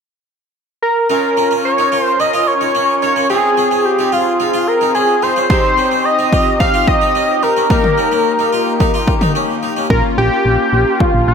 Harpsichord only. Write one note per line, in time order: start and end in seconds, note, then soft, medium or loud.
1.10 1.28 D#4 medium
1.37 1.46 C#4 medium
1.51 1.69 C#4 medium
1.78 1.88 D#4 medium
1.92 2.10 F4 medium
2.20 2.29 C#4 medium
2.33 2.52 F4 medium
2.61 2.70 D#4 medium
2.75 2.93 C#4 medium
3.02 3.12 D#4 medium
3.16 3.25 C#4 medium
3.30 3.48 D#4 medium
3.57 3.67 C#4 medium
3.71 3.89 C#4 medium
3.99 4.08 D#4 medium
4.12 4.31 F4 medium
4.40 4.49 D#4 medium
4.54 4.72 F4 medium
4.81 4.90 D#4 medium
4.95 5.13 C#4 medium
5.22 5.32 D#4 medium
5.36 5.45 C#4 medium
5.50 5.68 D#4 medium
5.78 5.87 C#4 medium
5.91 6.10 C#4 medium
6.19 6.28 D#4 medium
6.33 6.51 F4 medium
6.60 6.69 D#4 medium
6.74 6.92 F4 medium
7.01 7.11 D#4 medium
7.15 7.34 C#4 medium
7.43 7.52 D#4 medium
7.57 7.66 C#4 medium
7.70 7.89 D#4 medium
7.98 8.07 C#4 medium
8.12 8.30 C#4 medium
8.39 8.48 D#4 medium
8.53 8.71 F4 medium
8.80 8.89 D#4 medium
8.94 9.12 F4 medium
9.21 9.31 D#4 medium
9.35 9.54 C#4 medium
9.63 9.72 D#4 medium
9.77 9.86 C#4 medium